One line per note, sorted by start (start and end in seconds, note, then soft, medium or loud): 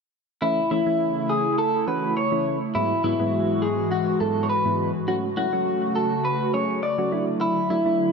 0.42 2.73 C#3 medium
0.42 0.60 E3 medium
0.42 0.60 A3 medium
0.42 2.73 A3 medium
0.42 0.60 C#4 medium
0.42 2.73 E4 medium
0.42 0.70 E4 medium
0.42 0.60 E4 medium
0.71 0.80 E3 medium
0.71 0.80 A3 medium
0.71 0.80 C#4 medium
0.71 1.31 E4 medium
0.71 0.80 E4 medium
0.86 1.47 E3 medium
0.86 1.47 A3 medium
0.86 1.47 C#4 medium
0.86 1.47 E4 medium
1.29 1.56 G#4 medium
1.58 1.87 A4 medium
1.87 2.14 E3 medium
1.87 2.14 A3 medium
1.87 2.14 C#4 medium
1.87 2.14 F#4 medium
1.87 2.15 B4 medium
2.17 2.58 C#5 medium
2.32 2.58 E3 medium
2.32 2.58 A3 medium
2.32 2.58 C#4 medium
2.32 2.58 E4 medium
2.74 2.93 G#2 medium
2.74 5.06 G#2 medium
2.74 5.05 E3 medium
2.74 2.93 F#3 medium
2.74 2.93 G#3 medium
2.74 5.06 G#3 medium
2.74 2.93 B3 medium
2.74 3.02 E4 medium
2.74 2.93 E4 medium
2.74 5.05 F#4 medium
3.04 3.13 G#2 medium
3.04 3.13 F#3 medium
3.04 3.13 G#3 medium
3.04 3.13 B3 medium
3.04 3.64 E4 medium
3.04 3.13 E4 medium
3.19 3.80 G#2 medium
3.19 3.80 F#3 medium
3.19 3.80 G#3 medium
3.19 3.80 B3 medium
3.19 3.80 E4 medium
3.62 3.91 G#4 medium
3.91 4.20 F#4 medium
4.20 4.47 G#2 medium
4.20 4.47 F#3 medium
4.20 4.47 G#3 medium
4.20 4.47 B3 medium
4.20 4.47 E4 medium
4.20 4.44 A4 medium
4.43 4.49 C#5 medium
4.49 4.91 B4 medium
4.65 4.91 G#2 medium
4.65 4.91 F#3 medium
4.65 4.91 G#3 medium
4.65 4.91 B3 medium
4.65 4.91 E4 medium
5.08 7.10 C#3 medium
5.08 5.26 F#3 medium
5.08 5.26 A3 medium
5.08 7.10 A3 medium
5.08 5.26 C#4 medium
5.08 7.10 F#4 medium
5.08 5.16 F#4 medium
5.08 5.26 F#4 medium
5.37 5.46 F#3 medium
5.37 5.46 A3 medium
5.37 5.46 C#4 medium
5.37 5.46 E4 medium
5.37 5.95 F#4 loud
5.52 6.13 F#3 medium
5.52 6.13 A3 medium
5.52 6.13 C#4 medium
5.52 6.13 F#4 medium
5.96 6.22 A4 medium
6.25 6.52 B4 loud
6.53 6.80 F#3 medium
6.53 6.80 A3 medium
6.53 6.80 C#4 medium
6.53 6.80 G#4 medium
6.53 6.81 C#5 medium
6.83 7.24 D5 loud
6.98 7.10 F#3 medium
6.98 7.11 A3 medium
6.98 7.12 C#4 medium
6.98 7.12 F#4 medium
7.12 8.12 D3 medium
7.12 7.59 F#3 medium
7.12 8.12 F#3 medium
7.12 7.59 A3 medium
7.12 7.59 D4 medium
7.12 8.12 E4 medium
7.12 7.59 E4 medium
7.41 7.68 E4 medium
7.70 7.79 F#3 medium
7.70 7.79 A3 medium
7.70 7.79 D4 medium
7.70 7.79 E4 medium
7.70 8.12 E4 medium
7.85 8.12 F#3 medium
7.85 8.12 A3 medium
7.85 8.12 D4 medium
7.85 8.12 E4 medium